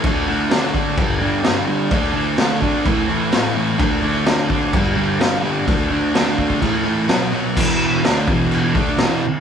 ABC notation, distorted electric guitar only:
X:1
M:4/4
L:1/8
Q:1/4=127
K:Dlyd
V:1 name="Distorted electric guitar" clef=bass
[D,A,D] [D,A,D] [D,A,D] [D,A,D] [=G,,D,=G,] [G,,D,G,] [G,,D,G,] [G,,D,G,] | [D,A,D] [D,A,D] [D,A,D] [D,A,D] [A,,E,A,] [A,,E,A,] [A,,E,A,] [A,,E,A,] | [D,A,D] [D,A,D] [D,A,D] [D,A,D] [=G,,D,=G,] [G,,D,G,] [G,,D,G,] [G,,D,G,] | [D,A,D] [D,A,D] [D,A,D] [D,A,D] [A,,E,A,] [A,,E,A,] [B,,F,B,] [B,,F,B,] |
[E,,B,,E,]2 [D,A,D] [E,,B,,E,]2 [D,A,D] [E,,B,,E,] z |]